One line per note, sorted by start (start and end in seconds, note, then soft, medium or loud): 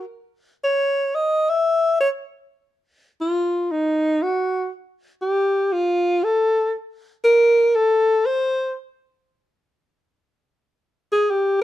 0.64 1.17 C#5 medium
1.15 1.51 D#5 medium
1.50 1.99 E5 medium
2.01 2.10 C#5 medium
3.21 3.73 F4 medium
3.71 4.24 D#4 medium
4.23 4.71 F#4 medium
5.22 5.74 G4 medium
5.73 6.25 F4 medium
6.24 6.72 A4 medium
7.25 7.77 A#4 medium
7.75 8.28 A4 medium
8.26 8.75 C5 medium
11.13 11.32 G#4 medium
11.30 11.61 G4 medium